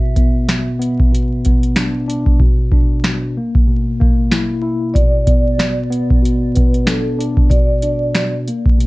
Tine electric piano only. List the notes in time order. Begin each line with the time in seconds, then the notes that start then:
Already playing: B2
0.16 B3
0.48 B2
0.79 B3
1.12 B2
1.45 B3
1.76 D4
2.08 D4
2.40 B2
2.72 D4
3.06 B2
3.37 A#3
3.67 B2
4.00 A#3
4.31 E4
4.62 E4
4.96 B2
5.27 B3
5.58 B2
5.90 B3
6.22 B2
6.56 B3
6.86 D4
7.18 D4
7.51 B2
7.83 D4
8.17 B2
8.48 A#3
8.78 B2